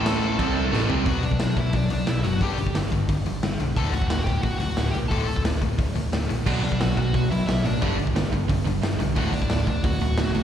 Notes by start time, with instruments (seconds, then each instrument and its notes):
Already playing: picked electric bass A1, distorted electric guitar A2 E3 A3, lead electric guitar A4 A5
0.06 snare, crash
0.39 picked electric bass C2, distorted electric guitar C3 G3 C4, kick, crash
0.72 picked electric bass A1, distorted electric guitar A2 E3 A3, snare
0.89 picked electric bass C2, distorted electric guitar C3 G3 C4, floor tom
1.06 picked electric bass B1, distorted electric guitar B2 F#3 B3, lead electric guitar F#4 F#5, kick, open hi-hat
1.23 picked electric bass B1, distorted electric guitar B2 F#3, lead electric guitar D4 D5, open hi-hat
1.31 kick
1.39 picked electric bass B1, distorted electric guitar B2 F#3, lead electric guitar D4 D5, snare, open hi-hat
1.57 picked electric bass B1, distorted electric guitar B2 F#3, lead electric guitar E4 E5, kick, open hi-hat
1.73 picked electric bass B1, distorted electric guitar B2 F#3, lead electric guitar D4 D5, kick, open hi-hat
1.90 picked electric bass B1, distorted electric guitar B2 F#3, lead electric guitar D4 D5, open hi-hat
2.07 picked electric bass B1, distorted electric guitar B2 F#3, lead electric guitar E4 E5, snare, open hi-hat
2.24 picked electric bass F#1, distorted electric guitar B2 F#3, lead electric guitar F#4 F#5, open hi-hat
2.41 picked electric bass G1, distorted electric guitar G2 D3 G3, lead electric guitar G4 G5, kick, open hi-hat
2.58 distorted electric guitar G2 D3, open hi-hat
2.67 kick
2.75 picked electric bass G1, distorted electric guitar G2 D3, snare, open hi-hat
2.91 picked electric bass G1, distorted electric guitar G2 D3, kick, open hi-hat
3.09 picked electric bass G1, distorted electric guitar G2 D3, kick, open hi-hat
3.26 picked electric bass G1, distorted electric guitar G2 D3, open hi-hat
3.43 picked electric bass G1, distorted electric guitar G2 D3, snare, open hi-hat
3.58 picked electric bass B1, distorted electric guitar G2 D3, open hi-hat
3.76 picked electric bass D1, distorted electric guitar D2 A2 D3, lead electric guitar A4 A5, kick, open hi-hat
3.91 picked electric bass D1, distorted electric guitar D2 A2, lead electric guitar F#4 F#5, open hi-hat
4.02 kick
4.08 picked electric bass D1, distorted electric guitar D2 A2, lead electric guitar F#4 F#5, snare, open hi-hat
4.20 lead electric guitar F#5
4.24 picked electric bass D1, distorted electric guitar D2 A2, lead electric guitar G4 G5, kick, open hi-hat
4.42 picked electric bass D1, distorted electric guitar D2 A2, lead electric guitar F#4 F#5, kick, open hi-hat
4.59 picked electric bass D1, distorted electric guitar D2 A2, lead electric guitar F#4 F#5, open hi-hat
4.77 picked electric bass D1, distorted electric guitar D2 A2, snare, open hi-hat
4.91 picked electric bass B1, distorted electric guitar D2 A2, lead electric guitar G4 G5, open hi-hat
5.08 picked electric bass D1, distorted electric guitar D2 A2 D3, lead electric guitar A4 A5, kick, open hi-hat
5.27 distorted electric guitar D2 A2, open hi-hat
5.36 kick
5.45 picked electric bass D1, distorted electric guitar D2 A2, snare, open hi-hat
5.61 picked electric bass D1, distorted electric guitar D2 A2, kick, open hi-hat
5.78 picked electric bass D1, distorted electric guitar D2 A2, kick, open hi-hat
5.95 picked electric bass D1, distorted electric guitar D2 A2, open hi-hat
6.12 picked electric bass D1, distorted electric guitar D2 A2, snare, open hi-hat
6.29 picked electric bass A#1, distorted electric guitar D2 A2, open hi-hat
6.46 picked electric bass B1, distorted electric guitar B2 F#3 B3, lead electric guitar D4 D5, kick, crash
6.63 picked electric bass B1, distorted electric guitar B2 F#3, lead electric guitar D4 D5, open hi-hat
6.72 kick
6.80 picked electric bass B1, distorted electric guitar B2 F#3, lead electric guitar F#4 F#5, snare, open hi-hat
6.97 picked electric bass B1, distorted electric guitar B2 F#3, lead electric guitar F#4 F#5, kick, open hi-hat
7.14 picked electric bass B1, distorted electric guitar B2 F#3, kick, open hi-hat
7.30 picked electric bass B1, distorted electric guitar B2 F#3, lead electric guitar E4 E5, open hi-hat
7.46 picked electric bass B1, distorted electric guitar B2 F#3, lead electric guitar E4 E5, snare, open hi-hat
7.64 picked electric bass A1, distorted electric guitar B2 F#3, lead electric guitar D4 D5, open hi-hat
7.81 picked electric bass G1, distorted electric guitar G2 D3 G3, kick, open hi-hat
7.99 distorted electric guitar G2 D3, open hi-hat
8.07 kick
8.15 picked electric bass G1, distorted electric guitar G2 D3, snare, open hi-hat
8.32 picked electric bass G1, distorted electric guitar G2 D3, kick, open hi-hat
8.49 picked electric bass G1, distorted electric guitar G2 D3, kick, open hi-hat
8.66 picked electric bass G1, distorted electric guitar G2 D3, open hi-hat
8.83 picked electric bass G1, distorted electric guitar G2 D3, snare, open hi-hat
9.00 picked electric bass B1, distorted electric guitar G2 D3, open hi-hat
9.16 picked electric bass D1, distorted electric guitar D2 A2 D3, lead electric guitar F#4 F#5, kick, open hi-hat
9.33 picked electric bass D1, distorted electric guitar D2 A2, lead electric guitar D4 D5, open hi-hat
9.42 kick
9.50 picked electric bass D1, distorted electric guitar D2 A2, lead electric guitar D4 D5, snare, open hi-hat
9.67 picked electric bass D1, distorted electric guitar D2 A2, kick, open hi-hat
9.84 picked electric bass D1, distorted electric guitar D2 A2, lead electric guitar F#4 F#5, kick, open hi-hat
10.01 picked electric bass D1, distorted electric guitar D2 A2, open hi-hat
10.17 picked electric bass D1, distorted electric guitar D2 A2, snare, open hi-hat
10.35 picked electric bass B1, distorted electric guitar D2 A2, open hi-hat